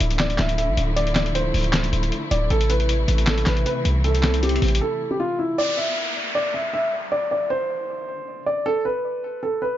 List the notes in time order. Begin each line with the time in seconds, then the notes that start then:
Already playing: D3 F3 A3 E4 E5
0.00 D1, closed hi-hat
0.10 closed hi-hat
0.19 D5, snare, clap, closed hi-hat
0.30 closed hi-hat
0.38 D1 E5, snare, clap, closed hi-hat
0.49 closed hi-hat
0.58 E5, closed hi-hat
0.68 A1
0.77 D1, closed hi-hat
0.96 D5, closed hi-hat
1.07 closed hi-hat
1.15 D5, snare, clap, closed hi-hat
1.26 closed hi-hat
1.35 C5, closed hi-hat
1.54 D1, open hi-hat
1.64 closed hi-hat
1.73 snare, clap, closed hi-hat
1.84 closed hi-hat
1.93 D1, closed hi-hat
2.03 closed hi-hat
2.12 closed hi-hat
2.31 D1 D5, closed hi-hat
2.50 A1 C3 E3 A4, closed hi-hat, swell
2.61 closed hi-hat
2.70 B4, closed hi-hat
2.80 closed hi-hat
2.89 closed hi-hat
3.08 A1, closed hi-hat
3.18 closed hi-hat
3.27 A4, snare, clap, closed hi-hat
3.38 closed hi-hat
3.46 A1 B4, snare, clap, closed hi-hat
3.57 closed hi-hat
3.66 B4, closed hi-hat
3.85 C2, closed hi-hat
4.04 A4, closed hi-hat
4.15 closed hi-hat
4.23 A4, snare, clap, closed hi-hat
4.34 closed hi-hat
4.43 G4, closed hi-hat
4.49 closed hi-hat
4.56 closed hi-hat
4.62 A1, closed hi-hat, open hi-hat
4.68 closed hi-hat
4.75 closed hi-hat
4.81 A4
5.11 G4
5.20 F4
5.39 E4
5.58 D5, downlifter
5.77 E5
6.35 D5
6.54 E5
6.73 E5
7.12 D5
7.31 D5
7.50 C5
8.46 D5
8.66 A4
8.85 B4
9.43 A4
9.62 B4